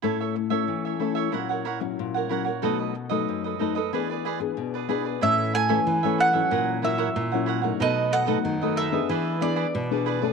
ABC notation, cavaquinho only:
X:1
M:4/4
L:1/16
Q:1/4=93
K:A
V:1 name="Cavaquinho"
[EAce] [Ace] z [Ace]2 [Ace] [EAce] [Ace] [E^Acf] [Acf] [EAcf] z2 [Acf] [EAcf] [Acf] | [^DAB^d] [ABd] z [ABd]2 [ABd] [DABd] [ABd] [EGB=d] [GBd] [EGBd] z2 [GBd] [EGBd] [GBd] | [EAce]2 [EAce] [EAce] z [Ace] [EAce] [Ace] [E^Acf]2 [EAcf] [EAcf] z [Acf] [EAcf] [Acf] | [^DAB^d]2 [DABd] [DABd] z [ABd] [DABd] [ABd] [EGB=d]2 [EGBd] [EGBd] z [GBd] [EGBd] [GBd] |]